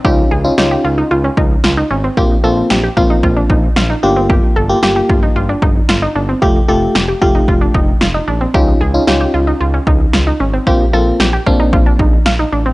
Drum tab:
SD |--o---o-|--o---o-|--o---o-|--o---o-|
BD |o----o--|o--ooo--|o--o-o--|o--ooo--|

SD |--o---o-|--o---o-|
BD |o----o--|o--ooo--|